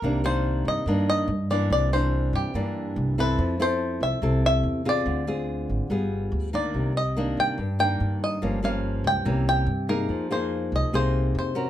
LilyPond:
<<
  \new Staff \with { instrumentName = "Five-string banjo" } { \time 4/4 \key c \minor \tempo 4 = 143 bes'8 c''4 ees''4 ees''4 d''8 | d''8 c''4 g'2 b'8~ | b'8 c''4 e''4 e''4 d''8~ | d''4. r2 d''8~ |
d''8 ees''4 g''4 g''4 ees''8~ | ees''8 f''4 g''4 g''4 bes'8~ | bes'8 c''4 ees''8 c''4 c''4 | }
  \new Staff \with { instrumentName = "Nylon-string guitar" } { \time 4/4 \key c \minor << { <ees bes d'>8 <ees bes d'>4. <ees bes d'>4 r8 <e bes d'>8~ | <e bes d'>8 <e bes d'>4. <e bes d'>4. <c' e' a'>8~ | <c' e' a'>8 <c' e' a'>4. <c' e' a'>4. <c' f' aes'>8~ | <c' f' aes'>8 <c' f' aes'>4. <b f' aes'>4. <ees bes d'>8~ |
<ees bes d'>8 r8 <ees bes d'>4 r8 <ees bes d'>4. | <f bes des'>8 <f bes des'>4. <e bes des'>4 r8 <bes ees' aes'>8~ | <bes ees' aes'>8 <bes ees' aes'>4. <bes ees' aes'>4. <des' fis' bes'>8 | } \\ { c2 g,2 | c2 g,2 | f2 c2 | d2 g2 |
c2 g,2 | g,2 c2 | f2 c2 | } >> }
  \new Staff \with { instrumentName = "Upright bass" } { \clef bass \time 4/4 \key c \minor c,4. g,16 r16 g,4 g,4 | c,4. g,16 r16 g,4 c,4 | f,4. c,16 r16 c,4 e,4 | d,4. aes,,16 r16 g,,4 d,4 |
c,4. g,16 r16 g,4 g,4 | g,,4. des,16 r16 c,4 g,4 | f,4. c,16 r16 c,4 f,4 | }
>>